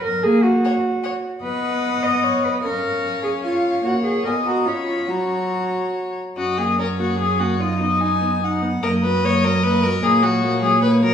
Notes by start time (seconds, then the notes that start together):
0.03 A#4
0.23 A#3 G#4
0.43 F#4
0.64 C#5 F#5
1.03 C#5 F#5
1.43 B3 B4 D#5 F#5
2.03 D#5
2.24 C#5
2.44 B4
2.63 C#4 A#4 C#5 F5
3.24 G#4
3.44 F4 C#5 F5
3.84 A#3 F#4 C#5 F#5
4.04 G#4
4.25 B3 A#4 D#5 G#5
4.45 F#4 A#5
4.65 C#4 F4 C#5 B5
4.87 F4
5.07 F#3 F#4 C#5 A#5
6.37 F#2 C#4 F#4 D#5
6.58 A#3 G#4
6.78 C#4 A#4 C#5
6.99 A#3 F#4
7.19 C#4 G#4
7.39 A#3 F#4
7.59 D#4 F4 D#5
7.79 B3 D#4
8.00 D#4 G#5
8.21 B3
8.42 D#4 F#5
8.62 B3
8.83 F#2 A#3 A#4 D#5
9.03 F#3 B4
9.24 A#3 C#5
9.44 F#3 A#4
9.63 A#3 B4
9.83 F#3 A#4
10.02 A#2 A#3 G#4 C#5
10.22 F#3 F#4
10.43 A#3
10.62 F#3 G#4
10.82 A#3 B4
11.02 F#3 A#4